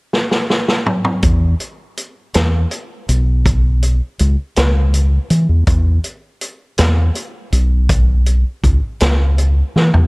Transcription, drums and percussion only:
0.13 snare
0.31 snare
0.50 snare
0.68 snare
0.86 mid tom
1.05 mid tom
1.23 kick, closed hi-hat
1.60 closed hi-hat
1.97 closed hi-hat
2.34 snare, closed hi-hat
2.71 closed hi-hat
3.09 closed hi-hat
3.46 kick, closed hi-hat
3.83 closed hi-hat
4.19 closed hi-hat
4.56 snare, closed hi-hat
4.94 closed hi-hat
5.30 closed hi-hat
5.67 kick, closed hi-hat
6.04 closed hi-hat
6.41 closed hi-hat
6.78 snare, closed hi-hat
7.15 closed hi-hat
7.52 closed hi-hat
7.89 kick, closed hi-hat
8.26 closed hi-hat
8.64 kick, closed hi-hat
9.00 snare, closed hi-hat
9.38 closed hi-hat
9.76 snare
9.94 floor tom

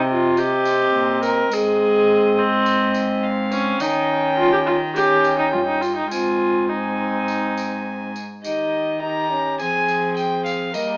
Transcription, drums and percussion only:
0.37 tambourine
0.65 tambourine
1.23 tambourine
1.52 tambourine
2.66 tambourine
2.94 tambourine
3.52 tambourine
3.80 tambourine
4.96 tambourine
5.24 tambourine
5.82 tambourine
6.11 tambourine
7.28 tambourine
7.57 tambourine
8.16 tambourine
8.44 tambourine
9.59 tambourine
9.88 tambourine
10.17 tambourine
10.46 tambourine
10.74 tambourine

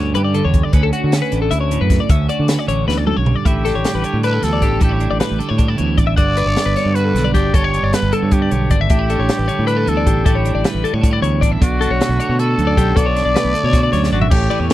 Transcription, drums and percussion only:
0.15 closed hi-hat
0.34 closed hi-hat
0.54 kick, closed hi-hat
0.73 kick, closed hi-hat
0.93 closed hi-hat
1.12 snare, closed hi-hat
1.32 closed hi-hat
1.51 closed hi-hat
1.71 closed hi-hat
1.90 kick, snare, closed hi-hat
2.09 kick, closed hi-hat
2.29 closed hi-hat
2.48 snare, closed hi-hat
2.69 closed hi-hat
2.89 snare
3.07 mid tom
3.26 floor tom
3.46 kick, closed hi-hat
3.65 snare, closed hi-hat
3.85 snare, closed hi-hat
4.04 closed hi-hat
4.23 closed hi-hat
4.43 snare, closed hi-hat
4.62 kick, closed hi-hat
4.81 kick, closed hi-hat
5.00 closed hi-hat
5.20 snare, closed hi-hat
5.40 closed hi-hat
5.59 kick, closed hi-hat
5.78 closed hi-hat
5.98 kick, closed hi-hat
6.17 kick, closed hi-hat
6.37 closed hi-hat
6.56 snare, closed hi-hat
6.76 snare, closed hi-hat
6.95 closed hi-hat
7.16 snare, closed hi-hat
7.35 kick, closed hi-hat
7.54 kick, closed hi-hat
7.74 closed hi-hat
7.93 snare, closed hi-hat
8.13 closed hi-hat
8.31 kick, closed hi-hat
8.51 closed hi-hat
8.71 kick, closed hi-hat
8.90 kick, closed hi-hat
9.10 closed hi-hat
9.29 snare, closed hi-hat
9.49 closed hi-hat
9.68 closed hi-hat
9.87 closed hi-hat
10.07 kick, closed hi-hat
10.26 kick, closed hi-hat
10.45 closed hi-hat
10.64 snare, closed hi-hat
10.85 closed hi-hat
11.03 kick, closed hi-hat
11.24 closed hi-hat
11.42 kick, closed hi-hat
11.62 kick, closed hi-hat
11.82 closed hi-hat
12.01 snare, closed hi-hat
12.20 closed hi-hat
12.39 closed hi-hat
12.59 closed hi-hat
12.77 kick, closed hi-hat
12.97 kick, closed hi-hat
13.16 snare, closed hi-hat
13.36 snare, closed hi-hat
13.55 closed hi-hat
13.73 kick, snare, closed hi-hat
13.93 snare, closed hi-hat
14.04 snare
14.22 floor tom
14.31 kick, crash
14.51 ride
14.70 ride

